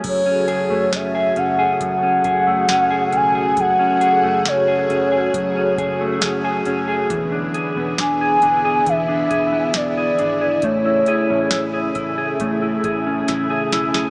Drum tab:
CC |x---------------|----------------|----------------|----------------|
HH |x-x-x-x-x-x-x-x-|x-x-x-x-x-x-x-x-|x-x-x-x-x-x-x-x-|x-x-x-x-x-x-x-x-|
SD |----o-------o---|----o-------o---|----o-------o---|----o-------o-oo|
BD |o-------o-o-----|o-------o-o-----|o-------o-o-----|o-----o-o-o-----|